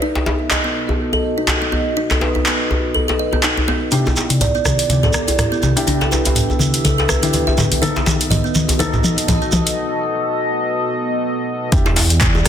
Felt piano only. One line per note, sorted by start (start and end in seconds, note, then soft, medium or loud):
3.92 4.04 D4 medium
3.92 4.04 E4 medium
3.92 4.04 G4 medium
5.76 5.86 D4 medium
5.76 5.86 E4 medium
5.76 5.86 G4 loud
5.87 7.20 D4 medium
5.87 7.20 E4 medium
5.87 7.20 G4 medium
7.23 7.80 D4 medium
7.23 7.80 E4 medium
7.23 7.80 G4 medium
7.82 7.95 B3 medium
7.82 7.95 D#4 medium
7.82 7.95 A4 medium
8.79 8.92 B3 medium
8.79 8.92 D#4 medium
8.79 8.92 A4 loud
11.72 11.85 D4 medium
11.72 11.85 E4 medium
11.72 11.85 G4 medium